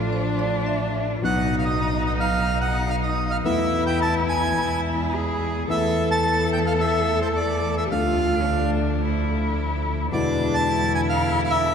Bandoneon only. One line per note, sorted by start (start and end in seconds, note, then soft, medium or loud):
1.24 1.55 F#5 medium
1.59 1.64 F5 medium
1.65 2.03 D#5 medium
2.06 2.12 D#5 medium
2.20 2.59 F5 medium
2.61 2.90 F#5 medium
2.90 2.96 F5 medium
3.03 3.32 D#5 medium
3.31 3.37 F5 medium
3.45 3.84 E5 medium
3.87 3.99 G5 medium
4.02 4.14 A5 medium
4.29 4.81 G#5 medium
5.71 6.09 E5 medium
6.11 6.50 A5 medium
6.53 6.59 G5 medium
6.67 6.73 F5 medium
6.80 7.20 E5 medium
7.22 7.28 C5 medium
7.36 7.75 D5 medium
7.78 7.84 E5 medium
7.91 8.70 F5 medium
10.13 10.55 D5 medium
10.54 10.92 A5 medium
10.95 11.01 G#5 medium
11.09 11.41 F5 medium
11.44 11.51 F5 medium
11.50 11.74 E5 medium